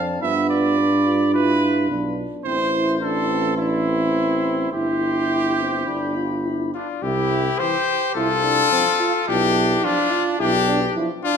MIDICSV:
0, 0, Header, 1, 6, 480
1, 0, Start_track
1, 0, Key_signature, 0, "major"
1, 0, Tempo, 557621
1, 194, Time_signature, 4, 2, 24, 8
1, 3074, Tempo, 576369
1, 5954, Tempo, 559701
1, 9677, End_track
2, 0, Start_track
2, 0, Title_t, "Trumpet"
2, 0, Program_c, 0, 56
2, 0, Note_on_c, 0, 81, 69
2, 186, Note_on_c, 0, 83, 70
2, 198, Note_off_c, 0, 81, 0
2, 1149, Note_off_c, 0, 83, 0
2, 1154, Note_on_c, 0, 83, 73
2, 1857, Note_off_c, 0, 83, 0
2, 2108, Note_on_c, 0, 84, 70
2, 2554, Note_off_c, 0, 84, 0
2, 2589, Note_on_c, 0, 84, 79
2, 3065, Note_off_c, 0, 84, 0
2, 3076, Note_on_c, 0, 84, 69
2, 4013, Note_off_c, 0, 84, 0
2, 4026, Note_on_c, 0, 84, 76
2, 4986, Note_on_c, 0, 83, 63
2, 4999, Note_off_c, 0, 84, 0
2, 5711, Note_off_c, 0, 83, 0
2, 5716, Note_on_c, 0, 65, 87
2, 5950, Note_on_c, 0, 67, 106
2, 5963, Note_off_c, 0, 65, 0
2, 6431, Note_on_c, 0, 72, 126
2, 6444, Note_off_c, 0, 67, 0
2, 6913, Note_off_c, 0, 72, 0
2, 6919, Note_on_c, 0, 69, 127
2, 7863, Note_off_c, 0, 69, 0
2, 7891, Note_on_c, 0, 67, 121
2, 8371, Note_on_c, 0, 65, 121
2, 8383, Note_off_c, 0, 67, 0
2, 8706, Note_off_c, 0, 65, 0
2, 8849, Note_on_c, 0, 67, 122
2, 9313, Note_off_c, 0, 67, 0
2, 9566, Note_on_c, 0, 65, 116
2, 9677, Note_off_c, 0, 65, 0
2, 9677, End_track
3, 0, Start_track
3, 0, Title_t, "Trumpet"
3, 0, Program_c, 1, 56
3, 190, Note_on_c, 1, 76, 100
3, 416, Note_off_c, 1, 76, 0
3, 426, Note_on_c, 1, 74, 95
3, 1137, Note_off_c, 1, 74, 0
3, 1156, Note_on_c, 1, 71, 102
3, 1625, Note_off_c, 1, 71, 0
3, 2108, Note_on_c, 1, 72, 104
3, 2554, Note_off_c, 1, 72, 0
3, 2599, Note_on_c, 1, 69, 106
3, 3070, Note_off_c, 1, 69, 0
3, 3076, Note_on_c, 1, 64, 93
3, 4012, Note_off_c, 1, 64, 0
3, 4036, Note_on_c, 1, 67, 98
3, 5685, Note_off_c, 1, 67, 0
3, 5721, Note_on_c, 1, 62, 68
3, 5827, Note_off_c, 1, 62, 0
3, 5956, Note_on_c, 1, 64, 98
3, 6444, Note_on_c, 1, 67, 127
3, 6456, Note_off_c, 1, 64, 0
3, 6915, Note_off_c, 1, 67, 0
3, 6920, Note_on_c, 1, 65, 106
3, 7883, Note_on_c, 1, 62, 105
3, 7896, Note_off_c, 1, 65, 0
3, 8363, Note_off_c, 1, 62, 0
3, 8367, Note_on_c, 1, 62, 108
3, 8833, Note_off_c, 1, 62, 0
3, 8848, Note_on_c, 1, 62, 108
3, 9313, Note_off_c, 1, 62, 0
3, 9565, Note_on_c, 1, 62, 87
3, 9677, Note_off_c, 1, 62, 0
3, 9677, End_track
4, 0, Start_track
4, 0, Title_t, "French horn"
4, 0, Program_c, 2, 60
4, 0, Note_on_c, 2, 62, 67
4, 193, Note_on_c, 2, 65, 75
4, 206, Note_off_c, 2, 62, 0
4, 1151, Note_off_c, 2, 65, 0
4, 1156, Note_on_c, 2, 65, 79
4, 1858, Note_off_c, 2, 65, 0
4, 2111, Note_on_c, 2, 64, 72
4, 2556, Note_off_c, 2, 64, 0
4, 2588, Note_on_c, 2, 64, 73
4, 3064, Note_off_c, 2, 64, 0
4, 3076, Note_on_c, 2, 64, 75
4, 4012, Note_off_c, 2, 64, 0
4, 4030, Note_on_c, 2, 64, 63
4, 4454, Note_off_c, 2, 64, 0
4, 4512, Note_on_c, 2, 64, 75
4, 4736, Note_off_c, 2, 64, 0
4, 4754, Note_on_c, 2, 60, 73
4, 4995, Note_on_c, 2, 62, 72
4, 5008, Note_off_c, 2, 60, 0
4, 5239, Note_on_c, 2, 65, 74
4, 5252, Note_off_c, 2, 62, 0
4, 5476, Note_on_c, 2, 64, 65
4, 5489, Note_off_c, 2, 65, 0
4, 5709, Note_off_c, 2, 64, 0
4, 5714, Note_on_c, 2, 62, 61
4, 5948, Note_off_c, 2, 62, 0
4, 6443, Note_on_c, 2, 52, 80
4, 6580, Note_off_c, 2, 52, 0
4, 7401, Note_on_c, 2, 53, 76
4, 7538, Note_off_c, 2, 53, 0
4, 8370, Note_on_c, 2, 53, 78
4, 8507, Note_off_c, 2, 53, 0
4, 9323, Note_on_c, 2, 53, 79
4, 9460, Note_off_c, 2, 53, 0
4, 9677, End_track
5, 0, Start_track
5, 0, Title_t, "Euphonium"
5, 0, Program_c, 3, 58
5, 0, Note_on_c, 3, 60, 78
5, 187, Note_off_c, 3, 60, 0
5, 192, Note_on_c, 3, 59, 82
5, 674, Note_on_c, 3, 62, 72
5, 687, Note_off_c, 3, 59, 0
5, 910, Note_off_c, 3, 62, 0
5, 915, Note_on_c, 3, 65, 77
5, 1153, Note_on_c, 3, 64, 77
5, 1166, Note_off_c, 3, 65, 0
5, 1628, Note_on_c, 3, 62, 81
5, 1641, Note_off_c, 3, 64, 0
5, 2106, Note_off_c, 3, 62, 0
5, 2112, Note_on_c, 3, 60, 69
5, 2219, Note_off_c, 3, 60, 0
5, 2353, Note_on_c, 3, 64, 79
5, 2586, Note_off_c, 3, 64, 0
5, 2592, Note_on_c, 3, 62, 68
5, 2834, Note_on_c, 3, 60, 71
5, 2847, Note_off_c, 3, 62, 0
5, 3076, Note_off_c, 3, 60, 0
5, 3080, Note_on_c, 3, 62, 64
5, 3312, Note_on_c, 3, 60, 69
5, 3325, Note_off_c, 3, 62, 0
5, 4031, Note_on_c, 3, 64, 80
5, 4043, Note_off_c, 3, 60, 0
5, 5715, Note_off_c, 3, 64, 0
5, 6922, Note_on_c, 3, 64, 88
5, 7030, Note_off_c, 3, 64, 0
5, 7156, Note_on_c, 3, 62, 82
5, 7394, Note_off_c, 3, 62, 0
5, 7405, Note_on_c, 3, 60, 84
5, 7512, Note_off_c, 3, 60, 0
5, 7640, Note_on_c, 3, 65, 94
5, 7749, Note_off_c, 3, 65, 0
5, 7884, Note_on_c, 3, 64, 91
5, 8366, Note_on_c, 3, 62, 86
5, 8378, Note_off_c, 3, 64, 0
5, 8604, Note_on_c, 3, 65, 96
5, 8617, Note_off_c, 3, 62, 0
5, 8835, Note_off_c, 3, 65, 0
5, 8841, Note_on_c, 3, 64, 82
5, 8948, Note_off_c, 3, 64, 0
5, 9081, Note_on_c, 3, 62, 98
5, 9189, Note_off_c, 3, 62, 0
5, 9319, Note_on_c, 3, 64, 90
5, 9426, Note_off_c, 3, 64, 0
5, 9561, Note_on_c, 3, 62, 100
5, 9677, Note_off_c, 3, 62, 0
5, 9677, End_track
6, 0, Start_track
6, 0, Title_t, "Tuba"
6, 0, Program_c, 4, 58
6, 0, Note_on_c, 4, 41, 89
6, 187, Note_off_c, 4, 41, 0
6, 193, Note_on_c, 4, 43, 91
6, 1636, Note_on_c, 4, 35, 77
6, 1649, Note_off_c, 4, 43, 0
6, 1944, Note_off_c, 4, 35, 0
6, 2113, Note_on_c, 4, 33, 91
6, 3999, Note_off_c, 4, 33, 0
6, 4032, Note_on_c, 4, 31, 71
6, 4976, Note_off_c, 4, 31, 0
6, 4996, Note_on_c, 4, 31, 76
6, 5702, Note_off_c, 4, 31, 0
6, 5955, Note_on_c, 4, 36, 111
6, 6359, Note_off_c, 4, 36, 0
6, 6922, Note_on_c, 4, 36, 90
6, 7321, Note_off_c, 4, 36, 0
6, 7889, Note_on_c, 4, 35, 106
6, 8286, Note_off_c, 4, 35, 0
6, 8848, Note_on_c, 4, 35, 105
6, 9243, Note_off_c, 4, 35, 0
6, 9677, End_track
0, 0, End_of_file